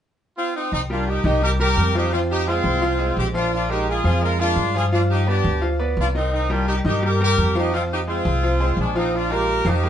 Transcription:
0.36 horn section C4 F4
0.55 horn section C4 D#4
0.72 upright bass C2, horn section C4 D#4
0.90 grand piano G3 G4 A#4, horn section D4 F4
1.07 horn section D#4 G4
1.24 upright bass C2, grand piano D#3 D#4 D#5, horn section D#4 G4
1.42 grand piano G3 G4 A#4, horn section G4 A#4
1.60 grand piano G3 G4 A#4, horn section G4 A#4
1.77 upright bass F2
1.95 grand piano F3 F4 F5, horn section D#4 G4
2.12 grand piano F3 F4 F5, horn section C4 F4
2.29 horn section D#4 G4
2.47 grand piano G#3 G#4 C5, horn section C4 F4
2.64 upright bass C2
2.81 grand piano F3 F4 F5
2.99 grand piano G#3 G#4 C5
3.17 upright bass A#1, horn section C4 G4
3.34 grand piano F3 F4 F5, horn section D4 F4
3.53 horn section D4 F4
3.69 grand piano G#3 G#4 A#4, horn section D#4 G4
3.88 horn section F4 G#4
4.04 upright bass F2, grand piano F3 F4 F5, horn section F4 G#4
4.22 grand piano G#3 G#4 A#4, horn section F4 A#4
4.39 grand piano G#3 G#4 A#4, horn section D4 F4
4.56 upright bass G2
4.75 grand piano F3 F4 F5, horn section F4 G#4
4.92 grand piano F3 F4 F5, horn section D4 F4
5.10 horn section D#4 G4
5.27 grand piano B3 B4 D5, horn section D4 G4
5.44 upright bass D2
5.61 grand piano F3 F4 F5
5.80 grand piano B3 B4 D5
5.97 upright bass C2, horn section D4 F4
6.15 grand piano D#3 D#4 D#5, horn section C4 D#4
6.34 horn section C4 D#4
6.50 grand piano G3 G4 A#4, horn section D4 F4
6.68 horn section D#4 G4
6.85 upright bass G2, grand piano D#3 D#4 D#5, horn section D#4 G4
7.03 grand piano G3 G4 A#4, horn section G4 A#4
7.20 grand piano G3 G4 A#4, horn section G4 A#4
7.38 upright bass F2
7.55 grand piano F3 F4 F5, horn section D#4 G4
7.73 grand piano F3 F4 F5, horn section C4 F4
7.92 horn section D#4 G4
8.07 grand piano G#3 G#4 C5, horn section C4 F4
8.25 upright bass C2
8.43 grand piano F3 F4 F5
8.60 grand piano G#3 G#4 C5
8.77 upright bass A#1, horn section G#3 D4
8.95 grand piano F3 F4 F5, horn section C4 D#4
9.14 horn section D4 F4
9.31 grand piano G#3 F4 A#4, horn section G4 A#4
9.65 upright bass F2, grand piano F3 F4 F5, horn section D#4 G4
9.83 grand piano G#3 G#4 A#4

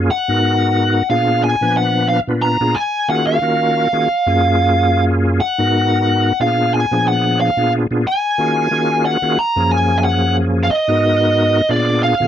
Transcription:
Already playing: tonewheel organ F#2 A#3 C#4 F4 G#4
0.11 lead electric guitar F#5
0.28 tonewheel organ G#2 B3 D#4 F#4 A#4
1.10 tonewheel organ A#2 B3 D4 F4 G#4, lead electric guitar F5
1.44 lead electric guitar G#5
1.61 tonewheel organ A#2 F3 B3 D4 B4
1.77 lead electric guitar F#5
2.09 lead electric guitar F5
2.27 tonewheel organ A#2 B3 D4 F4 B4
2.42 lead electric guitar A#5
2.60 tonewheel organ A#2 B3 D4 F4 G#4
2.75 lead electric guitar G#5
3.08 tonewheel organ D#3 A#3 C#4 F4 F#4 G#4, lead electric guitar F#5
3.27 lead electric guitar F5
3.42 tonewheel organ D#3 A#3 C#4 F4 F#4 A#4
3.93 tonewheel organ D#3 A#3 C#4 F4 F#4 G#4
4.27 tonewheel organ F#2 A#3 C#4 F4 G#4
5.40 lead electric guitar F#5
5.58 tonewheel organ G#2 B3 D#4 F#4 A#4
6.40 tonewheel organ A#2 B3 D4 F4 G#4, lead electric guitar F5
6.74 lead electric guitar G#5
6.91 tonewheel organ A#2 F3 B3 D4 G#4
7.08 lead electric guitar F#5
7.41 lead electric guitar F5
7.57 tonewheel organ A#2 B3 D4 F4 G#4
7.91 tonewheel organ A#2 B3 D4 F4 G#4
8.07 lead electric guitar G#5
8.38 tonewheel organ D#3 A#3 C#4 F4 F#4 G#4
8.71 tonewheel organ D#3 A#3 C#4 F4 F#4 G#4
9.06 lead electric guitar F#5
9.22 tonewheel organ D#3 A#3 C#4 F4 F#4 G#4
9.39 lead electric guitar A#5
9.56 tonewheel organ F#2 F3 A#3 C#4 G#4
9.72 lead electric guitar G#5
9.99 lead electric guitar G#5
10.04 lead electric guitar F#5
10.63 lead electric guitar F5
10.71 lead electric guitar D#5
10.88 tonewheel organ G#2 B3 D#4 F#4 A#4
11.69 tonewheel organ A#2 B3 D4 F4 G#4, lead electric guitar D5
12.03 lead electric guitar F5
12.20 tonewheel organ A#2 D3 B3 F4 G#4

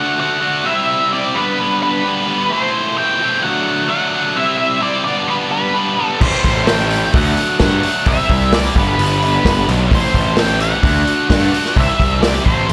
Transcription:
Already playing: distorted electric guitar D3 A3 D4 F#4, lead electric guitar F#5
0.19 distorted electric guitar D3 A3 D4 F#4, lead electric guitar F#5
0.41 distorted electric guitar D3 A3 D4 F#4
0.66 distorted electric guitar C3 G3 C4 E4, lead electric guitar E5
1.12 distorted electric guitar C3 G3 C4 E4, lead electric guitar D5
1.36 distorted electric guitar G2 D3 G3 B3 D4, lead electric guitar B4
1.59 distorted electric guitar G2 D3 G3 B3 D4
1.83 lead electric guitar B4
2.04 distorted electric guitar G2 D3 G3 B3 D4
2.26 distorted electric guitar G2 D3 G3 B3 D4
2.50 distorted electric guitar A2 E3 A3 C4 E4, lead electric guitar C5
2.98 distorted electric guitar A2 E3 A3 C4 E4, lead electric guitar G5
3.20 distorted electric guitar A2 E3 A3 C4 E4
3.43 distorted electric guitar D3 F#3 A3 D4, lead electric guitar F#5
3.89 distorted electric guitar D3 F#3 A3 D4, lead electric guitar F#5
4.13 distorted electric guitar D3 F#3 A3 D4
4.36 distorted electric guitar C3 G3 C4 E4, lead electric guitar E5
4.58 lead electric guitar E5
4.81 distorted electric guitar C3 G3 C4 E4, lead electric guitar D5
5.04 distorted electric guitar G2 D3 G3 B3 D4, lead electric guitar D5
5.27 distorted electric guitar G2 D3 G3 B3 D4, lead electric guitar B4
5.52 lead electric guitar B4
5.74 distorted electric guitar G2 D3 G3 B3 D4
5.98 distorted electric guitar G2 D3 G3 B3 D4
6.05 lead electric guitar A4
6.21 picked electric bass A1, distorted electric guitar A2 E3 A3 C4 E4, lead electric guitar C5, kick, crash
6.44 picked electric bass A1, lead electric guitar C5, kick, open hi-hat
6.67 distorted electric guitar A2 E3 A3 C4 E4, lead electric guitar G5, snare, open hi-hat
6.88 distorted electric guitar A2 E3 A3 C4 E4, open hi-hat
7.12 picked electric bass D2, distorted electric guitar D3 F#3 A3 D4, kick, open hi-hat
7.16 lead electric guitar F#5
7.37 open hi-hat
7.59 picked electric bass G2, distorted electric guitar D3 F#3 A3 D4, lead electric guitar F#5, kick, snare, open hi-hat
7.83 distorted electric guitar D3 F#3 A3 D4, open hi-hat
8.06 picked electric bass C2, distorted electric guitar C3 G3 C4 E4, lead electric guitar E5, kick, open hi-hat
8.29 picked electric bass C2, kick, open hi-hat
8.52 distorted electric guitar C3 G3 C4 E4, lead electric guitar D5, snare, open hi-hat
8.75 picked electric bass G1, distorted electric guitar G2 D3 G3 B3 D4, lead electric guitar B4, kick, open hi-hat
8.98 picked electric bass G1, distorted electric guitar G2 D3 G3 B3 D4, open hi-hat
9.22 lead electric guitar B4, open hi-hat
9.44 picked electric bass G1, distorted electric guitar G2 D3 G3 B3 D4, kick, snare, open hi-hat
9.68 picked electric bass B1, distorted electric guitar G2 D3 G3 B3 D4, open hi-hat
9.89 picked electric bass A1, distorted electric guitar A2 E3 A3 C4 E4, kick, open hi-hat
9.95 lead electric guitar C5
10.14 picked electric bass A1, kick, open hi-hat
10.37 distorted electric guitar A2 E3 A3 C4 E4, lead electric guitar G5, snare, open hi-hat
10.60 distorted electric guitar A2 E3 A3 C4 E4, lead electric guitar F#5, open hi-hat
10.82 picked electric bass D2, distorted electric guitar D3 A3 D4 F#4, kick, open hi-hat
11.07 open hi-hat
11.29 picked electric bass G2, distorted electric guitar D3 A3 D4 F#4, kick, snare, open hi-hat
11.52 distorted electric guitar D3 A3 D4 F#4, open hi-hat
11.66 snare
11.76 picked electric bass C2, distorted electric guitar C3 E3 G3 C4 E4, lead electric guitar E5, kick, open hi-hat
12.00 picked electric bass C2, kick, open hi-hat
12.21 distorted electric guitar C3 E3 G3 C4 E4, lead electric guitar D5, snare, open hi-hat
12.45 picked electric bass A1, distorted electric guitar A2 E3 A3 C4 E4, lead electric guitar C5, kick
12.69 picked electric bass A1, open hi-hat

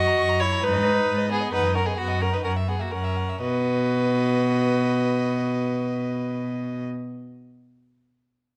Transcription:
Already playing: cello F#2, viola F#4, violin D#5
0.07 violin A#5
0.19 cello F#2, violin C#6
0.29 violin A#5
0.40 viola E4, violin C#5 C#6
0.52 violin A#5
0.63 cello G#2, viola D#4, violin B4
0.74 violin D#5
0.85 violin B4
0.96 violin D#5
1.07 cello G#2, violin B4
1.18 violin D#5
1.30 viola B3, violin G#4 B4
1.41 violin D#5
1.52 cello F#2, viola D#4, violin B4 F#5
1.64 violin D#5
1.75 viola C#4, violin A#4 F#5
1.86 viola B3, violin G#4 D#5
1.97 cello F#2, viola B3, violin F#4 F#5
2.08 violin D#5
2.20 viola C#4, violin A#4 F#5
2.32 viola D#4, violin B4 D#5
2.44 cello F#2, viola C#4, violin A#4 F#5
2.56 violin E5
2.68 viola B3, violin G#4 F#5
2.80 viola A#3, violin F#4 E5
2.92 cello F#2, viola C#4, violin A#4 F#5
3.04 violin E5
3.17 violin F#5
3.29 violin E5
3.41 cello B2, viola F#4, violin B4 D#5

